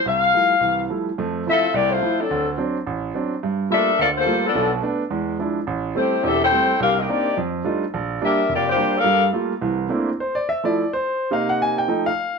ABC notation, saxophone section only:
X:1
M:4/4
L:1/8
Q:"Swing" 1/4=213
K:F
V:1 name="Saxophone section"
f6 z2 | z2 [CFAe]2 [B,EGd] [A,EFc]2 [_G,CDA]- | [_G,CDA] z6 z | z2 [DABe]2 [B,FAd] [B,FAc]2 [F,=B,DA]- |
[F,=B,DA] z6 z | z2 [A,EGc]2 [CGAe] [EAcg]3 | [DGBf] [B,DG_e] [B,_EGd]2 z4 | z2 [DGBe]2 [B,FGd] [B,FGc]2 [DABf]- |
[DABf] z6 z | z8 | z8 |]